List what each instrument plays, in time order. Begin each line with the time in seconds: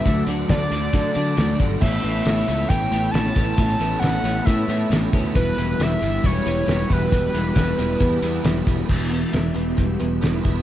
Already playing: string machine D5 D6, analog synth lead E5
0.04 picked electric bass D2, clean electric guitar D3 F#3 A3 D4 F#4 D5, string machine A4 F#5, kick, closed hi-hat
0.27 picked electric bass D2, clean electric guitar D3 F#3 A3 D4 F#4 D5, closed hi-hat
0.48 picked electric bass D2, clean electric guitar D3 F#3 A3 D4 F#4 D5, analog synth lead D5, kick, snare, closed hi-hat, tambourine
0.70 picked electric bass D2, clean electric guitar D3 F#3 A3 D4 F#4 D5, analog synth lead D5, closed hi-hat
0.92 clean electric guitar D3 F#3 A3 D4 F#4 D5, picked electric bass D3, kick, closed hi-hat
1.14 clean electric guitar D3 F#3 A3 D4 F#4 D5, picked electric bass D3, closed hi-hat
1.36 picked electric bass D2, clean electric guitar D3 F#3 A3 D4 F#4 D5, snare, closed hi-hat, tambourine
1.57 picked electric bass G1, clean electric guitar D3 F#3 A3 D4 F#4 D5, kick, closed hi-hat
1.80 picked electric bass A1, overdriven electric guitar A2 E3 C#4, clean electric guitar A3 B3 E4 B4 C#5, string machine C#5 E5 B5, analog synth lead E5, kick, crash
2.03 picked electric bass A1, overdriven electric guitar A2 E3 C#4, clean electric guitar A3 B3 E4 B4 C#5, closed hi-hat
2.24 picked electric bass A1, overdriven electric guitar A2 E3 C#4, clean electric guitar A3 B3 E4 B4 C#5, snare, closed hi-hat, tambourine
2.47 picked electric bass C#2, overdriven electric guitar A2 E3 C#4, clean electric guitar A3 B3 E4 B4 C#5, closed hi-hat
2.68 picked electric bass A1, overdriven electric guitar A2 E3 C#4, clean electric guitar A3 B3 E4 B4 C#5, analog synth lead G5, kick, closed hi-hat
2.91 picked electric bass A1, overdriven electric guitar A2 E3 C#4, clean electric guitar A3 B3 E4 B4 C#5, closed hi-hat
3.11 picked electric bass A1, overdriven electric guitar A2 E3 C#4, clean electric guitar A3 B3 E4 B4, analog synth lead A5, closed hi-hat, tambourine
3.15 clean electric guitar C#5, snare
3.26 snare
3.35 picked electric bass A1, overdriven electric guitar A2 E3 C#4, clean electric guitar A3 B3 E4 B4 C#5, kick, closed hi-hat
3.55 picked electric bass A1, overdriven electric guitar A2 E3, clean electric guitar A3 B3 E4 B4, analog synth lead A5, string machine A5, kick, closed hi-hat
3.59 overdriven electric guitar C#4, clean electric guitar C#5
3.79 picked electric bass A1, overdriven electric guitar A2 E3 C#4, clean electric guitar A3 B3 E4 B4 C#5, closed hi-hat
3.99 picked electric bass A1, overdriven electric guitar A2 E3 C#4, clean electric guitar A3 B3 E4 B4 C#5, analog synth lead F#5, closed hi-hat, tambourine
4.04 snare
4.23 picked electric bass A1, overdriven electric guitar A2 E3 C#4, clean electric guitar A3 B3 E4 B4 C#5, closed hi-hat
4.45 overdriven electric guitar A2 E3 C#4, picked electric bass A2, clean electric guitar A3 B3 E4 B4 C#5, analog synth lead E5, kick, closed hi-hat
4.68 overdriven electric guitar A2 E3 C#4, picked electric bass A2, clean electric guitar A3 B3 E4 B4 C#5, closed hi-hat
4.90 picked electric bass A1, overdriven electric guitar A2 E3 C#4, clean electric guitar A3 B3 E4 B4 C#5, snare, closed hi-hat, tambourine
5.12 picked electric bass D2, overdriven electric guitar A2 E3 C#4, clean electric guitar A3 B3 E4 B4 C#5, kick, closed hi-hat
5.34 picked electric bass E1, clean electric guitar E3 G3 B3 E4 B4, string machine G4 B4 B5, analog synth lead B4, kick, closed hi-hat
5.56 picked electric bass E1, clean electric guitar E3 G3 B3 E4 B4, closed hi-hat
5.78 picked electric bass E1, clean electric guitar E3 G3 B3 E4 B4, snare, closed hi-hat, tambourine
5.82 analog synth lead E5
5.99 picked electric bass G1, clean electric guitar E3 G3 B3 E4 B4, closed hi-hat
6.22 picked electric bass E1, clean electric guitar E3 G3 B3 E4 B4, analog synth lead C#5, kick, closed hi-hat
6.44 picked electric bass E1, clean electric guitar E3 G3 B3 E4 B4, closed hi-hat
6.65 picked electric bass E1, clean electric guitar E3 G3 B3 E4 B4, snare, closed hi-hat, tambourine
6.89 picked electric bass E1, clean electric guitar E3 G3 B3 E4 B4, analog synth lead B4, kick, closed hi-hat
7.10 picked electric bass E1, clean electric guitar E3 G3 B3 E4 B4, string machine D5, kick, closed hi-hat
7.33 picked electric bass E1, clean electric guitar E3 G3 B3 E4 B4, closed hi-hat
7.54 picked electric bass E1, clean electric guitar E3 G3 B3 E4 B4, kick, snare, closed hi-hat, tambourine
7.77 picked electric bass E1, clean electric guitar E3 G3 B3 E4 B4, closed hi-hat
7.99 picked electric bass E2, clean electric guitar E3 G3 B3 E4 B4, kick, closed hi-hat
8.21 picked electric bass E2, clean electric guitar E3 G3 B3 E4 B4, closed hi-hat
8.43 picked electric bass E1, clean electric guitar E3 G3 B3 E4 B4, snare, closed hi-hat, tambourine
8.65 picked electric bass E1, clean electric guitar E3 G3 B3 E4 B4, kick, closed hi-hat
8.88 picked electric bass E1, clean electric guitar E3, overdriven electric guitar B3 E4, string machine G4 B4 E5 B5, kick, crash
9.10 overdriven electric guitar E3, clean electric guitar B3, closed hi-hat
9.33 picked electric bass E1, overdriven electric guitar E3 B3, clean electric guitar E4, snare, closed hi-hat, tambourine
9.54 picked electric bass E1, overdriven electric guitar E3, clean electric guitar B3, closed hi-hat
9.77 picked electric bass E1, overdriven electric guitar E3 B3, clean electric guitar G3, kick, closed hi-hat
9.99 picked electric bass E1, overdriven electric guitar E3, clean electric guitar B3, closed hi-hat
10.21 picked electric bass E1, overdriven electric guitar E3 B3 E4, clean electric guitar B4, snare, closed hi-hat, tambourine
10.43 picked electric bass E1, overdriven electric guitar E3 B3, clean electric guitar E4, kick, closed hi-hat